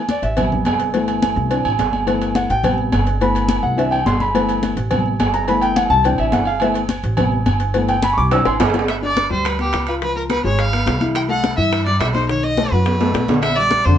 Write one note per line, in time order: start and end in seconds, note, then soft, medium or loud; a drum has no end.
0.09 0.23 D5 medium
0.09 cowbell medium
0.09 high conga medium
0.09 low agogo medium
0.22 0.62 A1 medium
0.22 0.49 E5 medium
0.22 cowbell medium
0.22 high conga soft
0.37 0.91 C3 medium
0.37 0.91 G3 soft
0.37 0.91 B3 medium
0.37 cowbell loud
0.37 high conga soft
0.37 low conga medium
0.37 low agogo loud
0.52 high conga soft
0.52 low conga medium
0.65 1.31 G1 medium
0.65 cowbell medium
0.65 high conga medium
0.65 low timbale medium
0.65 low agogo loud
0.80 cowbell medium
0.80 high conga soft
0.94 1.48 E3 medium
0.94 1.48 A3 medium
0.94 1.48 B3 medium
0.94 cowbell loud
0.94 high conga soft
0.94 low agogo medium
1.08 cowbell medium
1.08 high conga soft
1.08 low agogo medium
1.22 cowbell medium
1.22 high conga medium
1.22 low agogo medium
1.36 1.63 C2 loud
1.36 high conga soft
1.50 1.69 E3 soft
1.50 1.69 C4 soft
1.50 1.70 D4 medium
1.50 cowbell loud
1.50 high conga soft
1.50 low agogo medium
1.65 1.78 A1 medium
1.65 high conga soft
1.65 low agogo loud
1.78 2.44 G1 medium
1.78 cowbell medium
1.78 high conga medium
1.78 low timbale medium
1.78 low agogo medium
1.93 high conga medium
1.93 low agogo medium
2.06 2.47 E3 medium
2.06 2.48 A3 soft
2.06 2.48 B3 medium
2.06 cowbell loud
2.06 high conga soft
2.06 low agogo medium
2.21 cowbell medium
2.21 high conga soft
2.21 low agogo medium
2.35 2.49 F#5 medium
2.35 cowbell medium
2.35 high conga medium
2.35 low agogo medium
2.50 2.89 A1 medium
2.50 2.77 G5 loud
2.50 cowbell medium
2.50 high conga soft
2.64 3.04 C3 medium
2.64 3.05 G3 soft
2.64 3.05 B3 medium
2.64 cowbell loud
2.64 high conga soft
2.64 low conga medium
2.64 low agogo loud
2.78 high conga soft
2.92 3.58 G1 medium
2.92 cowbell medium
2.92 high conga medium
2.92 low timbale medium
2.92 low agogo loud
3.06 cowbell medium
3.06 high conga soft
3.21 3.75 E3 soft
3.21 3.75 A3 soft
3.21 3.76 B3 medium
3.21 3.61 B5 medium
3.21 cowbell loud
3.21 high conga soft
3.21 low agogo medium
3.35 cowbell medium
3.35 high conga soft
3.35 low agogo medium
3.48 cowbell medium
3.48 high conga loud
3.48 low agogo loud
3.63 4.03 C2 medium
3.63 3.77 F#5 medium
3.63 high conga soft
3.77 3.96 E3 medium
3.77 3.96 C4 medium
3.77 3.97 D4 medium
3.77 3.92 E5 medium
3.77 cowbell loud
3.77 high conga soft
3.77 low agogo medium
3.91 4.05 G5 medium
3.91 high conga soft
3.91 low agogo medium
4.05 4.71 G1 medium
4.05 4.20 C6 medium
4.05 cowbell medium
4.05 high conga medium
4.05 low timbale medium
4.05 low agogo medium
4.20 4.60 B5 loud
4.20 high conga medium
4.20 low agogo medium
4.34 4.75 E3 medium
4.34 4.75 A3 soft
4.34 4.75 B3 medium
4.34 cowbell loud
4.34 high conga soft
4.34 low agogo medium
4.49 cowbell medium
4.49 high conga soft
4.49 low agogo medium
4.63 cowbell medium
4.63 high conga medium
4.63 low agogo medium
4.76 5.16 A1 medium
4.76 cowbell medium
4.76 high conga soft
4.91 5.10 C3 medium
4.91 5.11 G3 medium
4.91 5.11 B3 medium
4.91 cowbell loud
4.91 high conga soft
4.91 low conga medium
4.91 low agogo medium
5.06 high conga soft
5.19 5.85 G1 medium
5.19 cowbell medium
5.19 high conga medium
5.19 low timbale medium
5.19 low agogo loud
5.34 5.43 A#5 medium
5.34 cowbell medium
5.34 high conga soft
5.44 5.88 E3 medium
5.44 5.89 A3 soft
5.44 5.47 A#5 medium
5.44 cowbell loud
5.44 high conga soft
5.44 low agogo medium
5.49 5.89 B3 medium
5.49 5.62 B5 loud
5.61 5.76 G5 loud
5.61 cowbell medium
5.61 high conga soft
5.61 low agogo medium
5.76 5.90 F#5 medium
5.76 cowbell medium
5.76 high conga medium
5.76 low agogo loud
5.90 6.17 C2 loud
5.90 6.04 A5 loud
5.90 high conga soft
6.04 6.45 E3 medium
6.04 6.45 C4 medium
6.04 6.46 D4 medium
6.04 6.19 G5 medium
6.04 cowbell loud
6.04 high conga soft
6.04 low agogo medium
6.18 6.32 A1 medium
6.18 6.33 E5 loud
6.18 high conga soft
6.18 low agogo medium
6.32 6.98 G1 medium
6.32 6.47 F#5 medium
6.32 cowbell medium
6.32 high conga medium
6.32 low timbale medium
6.32 low agogo medium
6.45 6.61 F5 loud
6.45 low agogo medium
6.60 6.80 E3 medium
6.60 6.80 A3 soft
6.60 6.81 B3 medium
6.60 6.70 E5 medium
6.60 cowbell loud
6.60 high conga soft
6.60 low agogo loud
6.74 cowbell medium
6.74 high conga soft
6.74 low agogo medium
6.89 cowbell medium
6.89 high conga loud
6.89 low agogo medium
7.03 7.43 A1 loud
7.03 cowbell medium
7.03 high conga soft
7.17 7.36 C3 medium
7.17 7.37 G3 soft
7.17 7.37 B3 medium
7.17 cowbell loud
7.17 high conga soft
7.17 low conga loud
7.17 low agogo loud
7.32 high conga soft
7.46 8.12 G1 medium
7.46 cowbell medium
7.46 high conga medium
7.46 low agogo loud
7.60 cowbell medium
7.60 high conga soft
7.74 7.94 E3 medium
7.74 7.94 A3 soft
7.74 7.94 B3 medium
7.74 cowbell loud
7.74 high conga soft
7.74 low agogo medium
7.88 8.03 G5 medium
7.88 cowbell medium
7.88 high conga soft
7.88 low agogo medium
8.02 8.17 B5 loud
8.02 cowbell medium
8.02 high conga loud
8.02 low agogo loud
8.13 8.16 C#6 medium
8.13 high conga soft
8.18 8.44 C2 medium
8.18 8.31 D6 loud
8.31 8.50 E3 medium
8.31 8.51 C4 soft
8.31 8.51 D4 medium
8.31 8.46 E6 loud
8.31 cowbell loud
8.31 high conga soft
8.31 high timbale loud
8.31 low agogo medium
8.45 8.59 A1 medium
8.45 8.55 C6 medium
8.45 high bongo loud
8.45 high conga soft
8.45 low agogo loud
8.60 9.25 G1 medium
8.60 cowbell medium
8.60 low bongo loud
8.60 high conga medium
8.60 low timbale loud
8.60 low agogo medium
8.70 low timbale medium
8.74 low bongo medium
8.74 low agogo medium
8.79 low timbale medium
8.88 8.95 E5 medium
8.88 high bongo medium
8.88 high conga soft
8.88 high timbale medium
9.02 9.26 D4 medium
9.02 9.26 D5 medium
9.02 9.29 D5 medium
9.02 high bongo soft
9.02 high conga soft
9.17 high bongo medium
9.17 high conga medium
9.17 high timbale medium
9.30 9.70 D2 medium
9.30 9.54 G3 medium
9.30 9.54 G4 medium
9.30 9.49 C5 medium
9.30 high bongo soft
9.45 9.59 B4 medium
9.45 high bongo medium
9.45 high conga soft
9.45 high timbale medium
9.59 9.82 B3 medium
9.59 9.86 G4 medium
9.59 9.82 B4 medium
9.59 high conga soft
9.59 high timbale medium
9.73 10.39 C#2 medium
9.73 high bongo medium
9.73 low bongo medium
9.73 high conga soft
9.73 high timbale medium
9.87 10.00 F4 medium
9.87 9.94 B4 medium
9.87 10.00 F5 medium
9.87 high bongo soft
9.87 high timbale medium
10.01 10.25 F3 medium
10.01 10.25 F4 medium
10.01 10.15 B4 medium
10.01 high bongo medium
10.01 high conga soft
10.16 10.23 A#4 medium
10.16 high bongo soft
10.16 high conga soft
10.30 10.42 B3 medium
10.30 10.43 B4 medium
10.30 10.42 B4 medium
10.30 high bongo medium
10.30 high conga medium
10.30 high timbale medium
10.44 10.84 G#1 medium
10.44 10.68 G#3 medium
10.44 10.68 G#4 medium
10.44 10.61 C#5 medium
10.44 high bongo soft
10.44 high conga soft
10.59 11.02 F5 medium
10.59 high bongo medium
10.59 high conga soft
10.59 high timbale medium
10.72 10.96 B3 medium
10.72 10.96 B4 medium
10.72 high bongo soft
10.72 high conga soft
10.72 high timbale medium
10.86 11.53 C2 medium
10.86 high bongo medium
10.86 low bongo medium
10.86 high conga medium
10.86 high timbale medium
10.86 low timbale medium
11.01 11.24 E3 medium
11.01 11.25 E4 medium
11.01 high conga medium
11.01 high timbale medium
11.15 11.22 G5 medium
11.15 high bongo medium
11.15 high conga soft
11.15 high timbale medium
11.29 11.52 A3 medium
11.29 11.53 A4 medium
11.29 11.56 F#5 medium
11.29 high bongo soft
11.29 high conga soft
11.44 high bongo medium
11.44 high conga medium
11.44 high timbale medium
11.56 11.97 G2 medium
11.56 11.81 E3 medium
11.56 11.81 E4 medium
11.56 11.84 E5 medium
11.56 high bongo soft
11.72 high bongo medium
11.72 high conga soft
11.72 high timbale medium
11.85 12.10 G3 medium
11.85 12.10 G4 medium
11.85 11.99 D5 medium
11.85 high conga soft
11.85 high timbale medium
12.00 12.66 B1 medium
12.00 12.06 E5 loud
12.00 high bongo medium
12.00 low bongo medium
12.00 high conga soft
12.00 high timbale medium
12.00 low timbale medium
12.13 12.26 D#4 medium
12.13 12.27 C5 medium
12.13 12.27 D#5 medium
12.13 high bongo soft
12.13 high conga medium
12.13 high timbale medium
12.29 12.53 D#3 medium
12.29 12.53 D#4 medium
12.29 12.44 C#5 medium
12.29 high bongo medium
12.29 high conga soft
12.43 12.73 D#5 loud
12.43 high bongo soft
12.43 high conga soft
12.57 12.69 A3 medium
12.57 12.70 A4 medium
12.57 high bongo medium
12.57 high conga medium
12.57 high timbale medium
12.71 13.11 F#2 medium
12.71 12.96 F#3 medium
12.71 12.96 F#4 medium
12.71 13.29 B4 medium
12.71 high bongo soft
12.71 high conga soft
12.86 high bongo medium
12.86 high conga soft
12.86 low timbale medium
13.00 13.24 A3 medium
13.00 13.24 A4 medium
13.00 high bongo soft
13.00 high conga soft
13.00 low timbale medium
13.14 13.80 A#1 medium
13.14 high bongo medium
13.14 low bongo medium
13.14 high conga medium
13.14 low timbale medium
13.28 13.52 D3 medium
13.28 13.52 D4 medium
13.28 high conga medium
13.28 low timbale medium
13.42 13.58 E5 medium
13.42 high bongo medium
13.42 high timbale medium
13.56 13.81 G3 medium
13.56 13.81 G4 medium
13.56 13.86 D5 loud
13.56 high bongo soft
13.56 high conga soft
13.71 high bongo medium
13.71 high conga medium
13.71 high timbale medium
13.84 13.98 F2 medium
13.84 13.98 D3 medium
13.84 13.98 D4 medium
13.84 13.98 C5 medium
13.84 high bongo soft